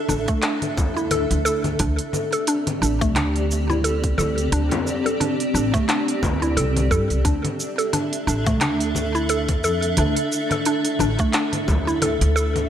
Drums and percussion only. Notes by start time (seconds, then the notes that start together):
0.09 low conga, cabasa
0.28 kick, open hi-hat, cabasa
0.42 clap, open hi-hat, cabasa
0.62 open hi-hat, low conga, cabasa
0.77 kick, frame drum, cabasa
0.97 cabasa
1.11 open hi-hat, low conga, cabasa
1.31 open hi-hat, cabasa
1.46 cabasa
1.64 open hi-hat, low conga, cabasa
1.79 kick, open hi-hat, cabasa
1.99 open hi-hat, cabasa
2.13 low conga, cabasa
2.32 open hi-hat, cabasa
2.47 open hi-hat, cabasa
2.67 open hi-hat, low conga, cabasa
2.83 cabasa
3.01 kick, open hi-hat, cabasa
3.16 clap, open hi-hat, low conga, cabasa
3.36 open hi-hat, cabasa
3.51 cabasa
3.70 low conga, cabasa
3.84 open hi-hat, cabasa
4.04 kick, open hi-hat, cabasa
4.18 low conga, cabasa
4.38 open hi-hat, cabasa
4.52 open hi-hat, cabasa
4.71 open hi-hat, low conga, frame drum, cabasa
4.87 cabasa
5.06 open hi-hat, cabasa
5.21 open hi-hat, low conga, cabasa
5.40 open hi-hat, cabasa
5.55 cabasa
5.74 kick, open hi-hat, low conga, cabasa
5.89 clap, open hi-hat, cabasa
6.08 open hi-hat, cabasa
6.23 kick, low conga, frame drum, cabasa
6.42 open hi-hat, cabasa
6.57 open hi-hat, cabasa
6.77 open hi-hat, low conga, cabasa
6.91 kick, cabasa
7.10 open hi-hat, cabasa
7.25 kick, open hi-hat, cabasa
7.45 open hi-hat, low conga, cabasa
7.60 cabasa
7.79 open hi-hat, cabasa
7.93 open hi-hat, low conga, cabasa
8.13 open hi-hat, cabasa
8.28 cabasa
8.46 kick, open hi-hat, low conga, cabasa
8.61 clap, open hi-hat, cabasa
8.80 open hi-hat, cabasa
8.95 low conga, cabasa
9.15 cabasa
9.29 open hi-hat, cabasa
9.49 kick, open hi-hat, low conga, cabasa
9.64 cabasa
9.82 open hi-hat, cabasa
9.97 open hi-hat, low conga, cabasa
10.16 open hi-hat, cabasa
10.32 cabasa
10.51 open hi-hat, low conga, cabasa
10.65 open hi-hat, cabasa
10.85 open hi-hat, cabasa
10.99 low conga, cabasa
11.19 kick, open hi-hat, cabasa
11.33 clap, open hi-hat, cabasa
11.53 open hi-hat, low conga, cabasa
11.68 kick, frame drum, cabasa
11.88 cabasa
12.02 open hi-hat, low conga, cabasa
12.21 open hi-hat, cabasa
12.37 cabasa
12.56 open hi-hat, low conga, cabasa